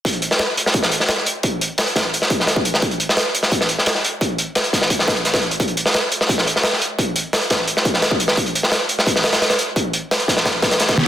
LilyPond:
\new DrumStaff \with { instrumentName = "Drums" } \drummode { \time 4/4 \tempo 4 = 173 <hh bd>16 hh16 hh16 sn16 <hh sn>8 hh16 sn16 <hh bd>16 sn16 hh16 sn16 <hh sn>16 sn16 hh8 | <hh bd>8 hh8 <hh sn>16 hh16 <hh bd sn>8 hh16 sn16 <hh bd>16 sn16 <hh sn>16 bd16 hh16 sn16 | <hh bd>16 hh16 hh16 sn16 <hh sn>8 hh16 sn16 <hh bd>16 sn16 hh16 sn16 <hh sn>16 sn16 hh8 | <hh bd>8 hh8 <hh sn>16 hh16 <hh bd sn>16 sn16 <hh bd>16 sn16 <hh bd sn>16 hh16 <hh sn>16 <hh bd sn>16 hh16 hh16 |
<hh bd>16 hh16 hh16 sn16 <hh sn>8 hh16 sn16 <hh bd>16 sn16 hh16 sn16 <hh sn>16 sn16 hh8 | <hh bd>8 hh8 <hh sn>16 hh16 <hh bd sn>8 hh16 sn16 <hh bd>16 sn16 <hh sn>16 bd16 hh16 sn16 | <hh bd>16 hh16 hh16 sn16 <hh sn>8 hh16 sn16 <hh bd>16 sn16 <hh sn>16 <hh sn>16 <hh sn>16 <hh sn>16 hh8 | <hh bd>8 hh8 <hh sn>16 hh16 <hh bd sn>16 sn16 <hh bd sn>8 <hh bd sn>16 <hh sn>16 <hh sn>16 <hh bd sn>16 sn8 | }